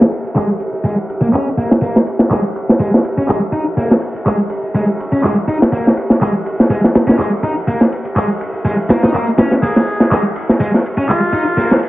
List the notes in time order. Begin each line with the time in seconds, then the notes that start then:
0.01 snare
0.12 ride
0.25 ride
0.36 G#3, clap, ride
0.60 ride
0.84 G#3, ride
1.10 ride
1.22 A#3
1.33 C#4, clap, ride
1.58 A#3, ride
1.71 snare
1.82 A#3, ride
1.96 snare
2.07 ride
2.19 snare
2.31 G#3, clap, ride
2.56 ride
2.69 snare
2.80 G#3, ride
2.94 snare
3.04 ride
3.18 C#4
3.29 G#3, clap, ride
3.53 D#4, ride
3.77 A#3, open hi-hat
3.91 snare
4.02 ride
4.16 ride
4.26 G#3, clap, ride
4.50 ride
4.75 G#3, ride
5.00 ride
5.13 C#4
5.23 G#3, clap, ride
5.48 D#4, ride
5.62 snare
5.73 A#3, ride
5.87 snare
5.97 ride
6.10 snare
6.21 G#3, clap, ride
6.46 ride
6.60 snare
6.70 G#3, ride
6.84 snare
6.95 snare, ride
7.08 C#4, snare, ride
7.19 G#3, clap, ride
7.44 D#4, ride
7.68 A#3, ride
7.81 snare
7.92 ride
8.05 ride
8.16 G#3, clap, ride
8.41 ride
8.65 G#3, ride
8.89 A#3, snare, ride
9.03 D#4, snare, ride
9.14 A#3, clap, ride
9.38 C#4, snare, ride
9.51 snare
9.63 A#3 G#4, ride
9.76 snare
9.87 ride
10.00 snare
10.11 G#3, clap, ride
10.36 ride
10.49 snare
10.60 G#3, ride
10.74 snare
10.86 ride
10.98 C#4
11.09 G#3 F4, clap, ride
11.33 D#4, ride
11.57 A#3, open hi-hat
11.71 snare
11.83 ride